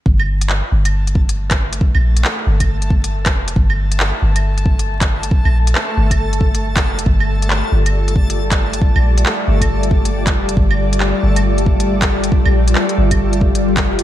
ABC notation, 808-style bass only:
X:1
M:4/4
L:1/16
Q:"Swing 16ths" 1/4=137
K:Bblyd
V:1 name="808-style bass" clef=bass
G,,,4- G,,, z G,,,8- G,,,2- | G,,, B,,,3 z2 G,,,8 F,,,2 | G,,,4- G,,, z G,,,8- G,,,2- | G,,, B,,,3 z2 G,,,8 F,,,2 |
G,,,4- G,,, z G,,,8- G,,,2- | G,,, B,,,3 z2 G,,,8 F,,,2 | G,,,4- G,,, z G,,,8- G,,,2- | G,,, B,,,3 z2 G,,,8 F,,,2 |]